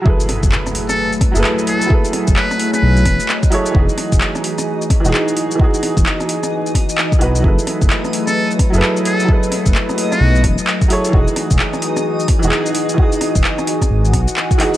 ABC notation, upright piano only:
X:1
M:4/4
L:1/16
Q:"Swing 16ths" 1/4=130
K:F#dor
V:1 name="Upright piano"
[F,EGAB]8- [F,EGAB]3 [F,EGAB]4- [F,EGAB] | [F,EGAB]8- [F,EGAB]3 z3 [F,EGAc]2 | [E,DFG]8- [E,DFG]3 [E,DFG]4- [E,DFG] | [E,DFG]8- [E,DFG]3 z3 [E,DFB]2 |
[F,EGAB]8- [F,EGAB]3 [F,EGAB]4- [F,EGAB] | [F,EGAB]8- [F,EGAB]3 z3 [F,EGAc]2 | [E,DFG]8- [E,DFG]3 [E,DFG]4- [E,DFG] | [E,DFG]8- [E,DFG]3 z3 [E,DFG] z |]